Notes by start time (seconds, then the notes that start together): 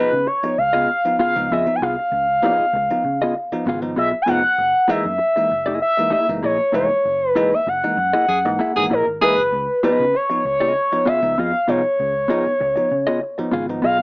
Already playing: B3 D#4 F4 G#4 B4 D#5
0.13 C#3 B3 D#4
0.26 C#5, muted clean electric guitar stroke
0.43 F3 B3 D#4, muted clean electric guitar stroke
0.58 C#2 F5
0.73 C#3 B3 F4 G#4 D#5
1.05 F3 B3 D#4, muted clean electric guitar stroke
1.19 C#3 B3 F4 G#4 F5, muted fingered electric bass stroke
1.36 C#2 F3 B3 D#4
1.50 F2 C#3 B3 F4 G#4 D#5 E5
1.66 F3 B3 D#4, muted clean electric guitar stroke
1.75 G#5
1.81 C2 B3 D#4 F4 G#4 F5
1.99 muted clean electric guitar stroke
2.12 C#2 C#3
2.43 F3 B3 D#4 F4 G#4 D#5
2.59 B3 D#4, muted fingered electric bass stroke
2.73 C#2, muted clean electric guitar stroke
2.90 F3 B3 D#4, muted clean electric guitar stroke
3.04 C#3
3.21 C#3 B3 F4 G#4 D#5
3.52 F3 B3 D#4, muted fingered electric bass stroke, muted clean electric guitar stroke
3.66 G#1 C#3 B3 F4 G#4 F5
3.82 F3 B3 D#4, muted clean electric guitar stroke
3.96 B1 B3 F4 G#4 D#5 E5
4.22 G#5
4.26 F1 F3 B3 D#4 F4 G#4 F5 F#5
4.43 muted clean electric guitar stroke
4.58 F#1
4.88 E3 G#3 A#3 D#4 E4 G#4 D#5 E5, muted fingered electric bass stroke
5.05 F#2 A#3 D#4
5.18 muted clean electric guitar stroke
5.36 E3 G#3 A#3 D#4, muted clean electric guitar stroke
5.51 F#1
5.66 A#3 E4 G#4 D#5
5.82 E5
5.97 E3 G#3 A#3 D#4, muted clean electric guitar stroke
6.10 A#3 E4 G#4 E5, muted fingered electric bass stroke
6.27 F#1 E3 G#3 A#3 D#4, muted clean electric guitar stroke
6.43 A#1 A#3 E4 G#4 C#5 D#5
6.60 muted clean electric guitar stroke
6.72 F1 E3 G#3 A#3 D#4 E4 G#4 C#5 E5
6.90 muted clean electric guitar stroke
7.05 F#1
7.30 B4
7.35 E3 G#3 A#3 D#4 E4 G#4 D#5
7.52 A#3 D#4 E5, muted fingered electric bass stroke
7.67 F#1 F#5, muted clean electric guitar stroke
7.84 E3 G#3 A#3 D#4, muted clean electric guitar stroke
7.97 F#2
8.13 A#3 E4 G#4 D#5
8.28 F#2 G#4
8.45 G#2 E3 G#3 A#3 D#4, muted clean electric guitar stroke
8.59 A#3 E4 G#4 E5
8.75 G#1 E3 G#3 A#3 D#4 G#4, muted clean electric guitar stroke
8.90 A#1 A#3 E4 G#4 A#4 D#5
9.07 G#1, muted clean electric guitar stroke
9.21 E3 G#3 A#3 D#4 E4 G#4 B4 E5
9.37 F#1, muted clean electric guitar stroke
9.52 C#2 C#3
9.83 F3 B3 D#4 F4 G#4 B4 D#5, muted fingered electric bass stroke
10.00 C#3 B3 D#4
10.13 C#5, muted clean electric guitar stroke
10.30 F3 B3 D#4, muted clean electric guitar stroke
10.45 C#2 C#5
10.60 C#3 B3 F4 G#4 D#5
10.92 F3 B3 D#4, muted clean electric guitar stroke
11.06 C#3 B3 F4 G#4 E5 F5, muted fingered electric bass stroke
11.22 C#2 F3 B3 D#4, muted clean electric guitar stroke
11.38 F2 B3 F4 G#4 D#5 F5
11.54 muted clean electric guitar stroke
11.68 C2 F3 B3 D#4 F4 G#4 C#5 F5
11.85 muted clean electric guitar stroke
12.00 C#2 C#3
12.28 F3 B3 D#4 F4 G#4 D#5
12.46 B3 D#4, muted fingered electric bass stroke
12.60 C#2, muted clean electric guitar stroke
12.76 F3 B3 D#4, muted clean electric guitar stroke
12.91 C#3
13.07 C#3 B3 F4 G#4 D#5
13.24 muted clean electric guitar stroke
13.38 F3 B3 D#4, muted clean electric guitar stroke, muted fingered electric bass stroke
13.51 G#1 C#3 B3 F4 G#4 F5
13.69 F3 B3 D#4, muted clean electric guitar stroke
13.82 B1 B3 F4 G#4 D#5 F5